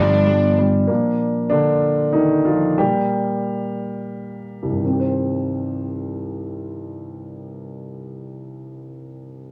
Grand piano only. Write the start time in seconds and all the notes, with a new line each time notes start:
Already playing: G3
0.27 G3
0.58 G3
0.87 A#2 F3 A#3 D4
1.50 D3 D4
2.13 D#3 D#4
2.45 F3 F4
2.78 A#2 G3 A#3 G4
4.62 C2
4.70 G2
4.77 D#3
4.85 C4
4.92 G4
5.00 C5